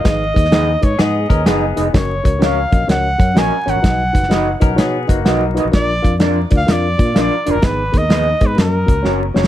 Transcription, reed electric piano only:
X:1
M:4/4
L:1/8
Q:"Swing" 1/4=127
K:F#
V:1 name="Reed electric piano"
[DGBd] [DGBd] [DGBf] [DGBd] [DGBf] [DGBd] [DGBf] [DGBd] | [CFAc] [CFAc] [CFAc] [CFAd] [CFAc] [CFAc] [CFAd] [CFAc] | [DFBd] [DFBf] [DFBd] [DFBd] [DFBc] [DFBd] [DFBf] [DFBd] | [=DEA=d] [DEAe] [DEAd] [DEAd] [DEAe] [DEAd] [DEAe] [DEAd] |
[B,DGB] [B,DGA] [B,DGB] [B,DGB] [A,CFA] [A,CFA] [A,CFc] [A,CFc] |]
V:2 name="Reed electric piano" clef=bass
G,,3 z4 z | z8 | B,,3 z4 z | A,,3 z4 z |
G,,3 z4 z |]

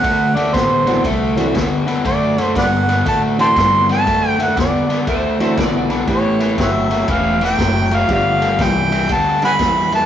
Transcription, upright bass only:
X:1
M:4/4
L:1/8
Q:"Swing" 1/4=119
K:Dmix
V:1 name="Upright bass" clef=bass
D,,2 A,,,2 C,,2 D,,2 | F,,2 G,,2 A,,2 G,,2 | F,,2 E,, z D,,2 B,,,2 | A,,,2 G,,,2 E,,,2 F,,,2 |
G,,,2 C,,2 D,,2 E,,2 |]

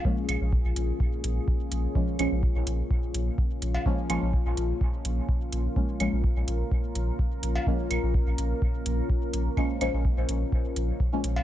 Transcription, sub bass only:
X:1
M:4/4
L:1/16
Q:1/4=126
K:Bbm
V:1 name="Sub bass" clef=bass
z2 B,,, B,,, z B,,, B,,, z3 B,,, z3 B,,, z | z2 B,,, B,,, z B,,, B,,, z3 B,,, z3 B,,, z | z2 B,,, B,,, z B,,, B,,, z3 B,,, z3 B,,, z | z2 B,,, B,,, z B,,, B,,, z3 B,,, z3 B,,, z |
z2 B,,, B,,, z B,,, B,,, z3 B,,, z3 B,,, z | z2 B,,, B,,, z B,,, B,,, z3 B,,, z3 B,,, z |]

